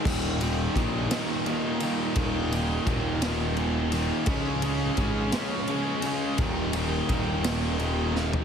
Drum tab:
CC |x-----------|------------|------------|------------|
RD |--x-x-x-x-x-|x-x-x-x-x-x-|x-x-x-x-x-x-|x-x-x-x-x---|
SD |------o-----|------o-----|------o-----|------o---o-|
FT |------------|------------|------------|-----------o|
BD |o---o-------|o---o-------|o---o-------|o---o-------|